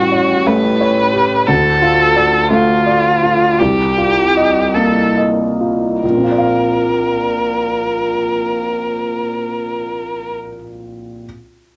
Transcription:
Already playing: grand piano A1 G3, violin F#4
0.12 grand piano C#5
0.46 grand piano A3, violin B4
0.81 grand piano C#5
1.13 grand piano G4
1.46 grand piano D2, violin A4
1.82 grand piano F4
2.16 grand piano D5
2.51 grand piano A3, violin F4
2.86 grand piano D5
3.23 grand piano F4
3.59 grand piano C2, violin G4
3.98 grand piano F4
4.37 grand piano D#5
4.74 grand piano A#3, violin A4
5.17 grand piano D#5
5.61 grand piano F4
6.03 grand piano A#1, violin A#4
6.10 grand piano A#2
6.17 grand piano C4
6.24 grand piano F4
6.31 grand piano D5
6.38 grand piano F5

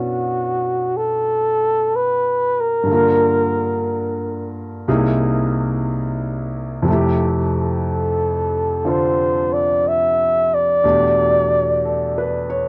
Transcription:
Already playing: grand piano B2 B3 C#4 D4 E4 F#4, flugelhorn F#4
0.97 flugelhorn A4
1.96 flugelhorn B4
2.61 flugelhorn A#4
2.83 grand piano G2 D3
2.90 grand piano A#3 F4
2.95 grand piano A#4
4.88 grand piano C2 C3 A#3 D#4 E4 G#4
6.82 grand piano F2 C3
6.88 grand piano A3 E4
6.93 grand piano G4
7.58 flugelhorn A4
8.85 grand piano D3 C4 F4 A4
8.89 flugelhorn C5
9.53 flugelhorn D5
9.88 flugelhorn E5
10.54 flugelhorn D5
10.84 grand piano E2 B2 A3 D4 F#4 G4
11.85 grand piano A4
12.18 grand piano B4
12.50 grand piano C#5

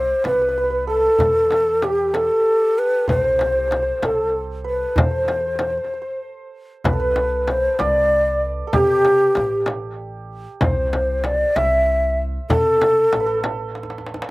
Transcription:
Already playing: upright bass C2, ney C5, santur C5 D5 E5
0.24 upright bass C2, santur B4, ney B4, tombak tek, frame drum
0.33 santur B4
0.42 santur B4
0.49 santur B4
0.58 santur B4
0.64 santur B4
0.70 santur B4
0.87 santur A4, ney A4
1.19 upright bass E2, tombak dum, frame drum
1.51 tombak tek, frame drum
1.82 santur G4, ney G4, tombak tek, frame drum
2.13 santur A4, ney A4, tombak tek, frame drum
2.79 ney B4
3.08 upright bass C2, ney B4, santur C5, tombak dum, frame drum
3.16 santur C5
3.21 ney C5, santur C5
3.31 santur C5
3.38 santur C5, tombak tek, frame drum
3.47 santur C5
3.52 santur C5
3.59 santur C5
3.68 santur C5, tombak tek
3.72 frame drum
3.77 santur C5
3.82 santur C5
4.02 upright bass C2, santur A4, ney A4, tombak tek, frame drum
4.64 santur B4
4.69 ney B4
4.96 upright bass E2, santur C5, ney C5, tombak dum, frame drum
5.03 santur C5
5.11 santur C5
5.18 santur C5
5.25 santur C5, tombak tek, frame drum
5.31 santur C5
5.41 santur C5
5.47 santur C5
5.55 santur C5, frame drum
5.59 santur C5, tombak tek
5.70 santur C5
5.77 santur C5
5.84 santur C5
5.94 santur C5
6.02 santur C5
6.84 upright bass C2, santur B4, ney B4, tombak dum, frame drum
6.93 santur A4
7.00 santur B4
7.16 tombak tek, frame drum
7.47 ney C5, tombak tek, frame drum
7.79 upright bass C2, santur D5, ney D5, tombak tek, frame drum
8.67 santur A4
8.73 upright bass C3, ney G4, santur G4, frame drum, tombak dum
9.05 tombak tek, frame drum
9.35 upright bass A1, tombak tek, frame drum
9.66 tombak tek, frame drum
10.61 upright bass C2, santur C5, ney C5, frame drum, tombak dum
10.93 tombak tek, frame drum
11.24 ney D5, tombak tek, frame drum
11.56 upright bass C2, ney E5, santur E5, tombak tek, frame drum
12.50 upright bass C3, ney A4, santur A4, tombak dum, frame drum
12.81 tombak tek, frame drum
13.13 upright bass A1, santur A4, tombak tek, frame drum
13.20 santur B4
13.26 santur A4
13.44 tombak tek, frame drum
13.75 tombak tek
13.83 tombak ka
13.90 tombak tek
13.98 tombak ka
14.06 tombak tek
14.14 tombak ka
14.22 tombak tek

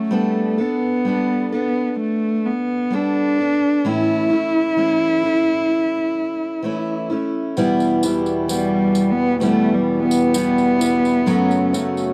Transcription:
Already playing: steel-string acoustic guitar F#3 A3 C#4 F#4, cello A3
0.11 steel-string acoustic guitar G3 B3 D4 A4
0.58 cello B3, steel-string acoustic guitar B3 D4 A4
1.05 steel-string acoustic guitar G3 B3 D4 A4
1.52 cello B3, steel-string acoustic guitar B3 D4 A4
2.00 cello A3
2.46 cello B3
2.90 steel-string acoustic guitar G3 B3 D4 A4, cello D4
3.38 steel-string acoustic guitar B3 D4 A4
3.85 steel-string acoustic guitar A2 E3 A3 C#4 E4, cello E4
4.30 steel-string acoustic guitar A3 C#4 E4
4.77 steel-string acoustic guitar E3 A3 C#4 E4
5.23 steel-string acoustic guitar A3 C#4 E4
6.63 steel-string acoustic guitar E3 A3 C#4 E4
7.10 steel-string acoustic guitar A3 C#4 E4
7.56 steel-string acoustic guitar E2 B2 E3 G3 B3 E4, harmonium E2 B2 G3, tambourine
7.80 tambourine
8.03 steel-string acoustic guitar E3 G3 B3 E4, tambourine
8.26 tambourine
8.48 steel-string acoustic guitar E3 G3 B3 E4, cello G3, tambourine
8.95 tambourine
9.11 cello B3
9.40 steel-string acoustic guitar E2 B2 E3 G3 B3 E4, cello A3, tambourine
9.74 cello G3
10.03 cello B3
10.11 tambourine
10.33 steel-string acoustic guitar E3 G3 B3 E4, tambourine
10.58 tambourine
10.79 steel-string acoustic guitar E3 G3 B3 E4, tambourine
11.05 tambourine
11.26 steel-string acoustic guitar F#2 C#3 F#3 A3 C#4 F#4, harmonium F#2 C#3 A3, tambourine
11.51 tambourine
11.73 steel-string acoustic guitar F#3 A3 C#4 F#4, tambourine
11.97 tambourine

